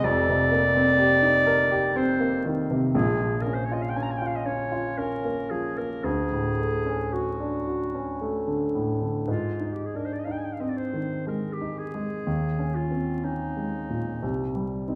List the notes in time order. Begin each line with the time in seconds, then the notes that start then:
0.03 F1 F2 D5
0.29 C3
0.52 A#3
0.76 C4
0.99 G4
1.22 D#4
1.47 A#4
1.71 G4
1.96 C4 C5
2.20 A#3
2.45 D#3
2.71 C3
2.95 A#1 A#2 G#4
3.22 F3
3.42 A#4
3.46 C#4
3.55 C5
3.65 C#5
3.71 F4 D#5
3.82 F5
3.90 G5
3.96 C#4 G#5
4.03 A#5
4.11 G#5
4.18 F4 G5
4.27 F5
4.36 D#5
4.46 C#4 C#5
4.72 F4
4.98 C#4 A#4
5.25 A#3
5.50 F3 G#4
5.77 A#3 A#4
6.04 D2 G#4
6.32 A2
6.59 A3
6.86 C#4
7.13 F#4
7.40 D4
7.67 F#4
7.94 C#4
8.21 A3
8.47 D3
8.75 A2
9.02 D3
9.28 G#2 F4
9.60 D#4
9.74 G4
9.86 G#4
9.94 D4 A#4
10.06 C5
10.13 D5
10.20 D#5
10.25 D#4 F5
10.32 G5
10.38 G#5
10.44 G5
10.53 F5
10.60 C4 D#5
10.70 D5
10.77 C5
10.94 D#3
11.27 G#3 A#4
11.53 G4
11.61 D#4
11.79 G#4
11.94 G#3
12.27 D#2
12.59 C#4
12.75 F4
12.91 C4
13.24 C#4 D#4
13.57 G#3
13.90 A#2
14.22 C2
14.55 G3
14.88 C4 D#4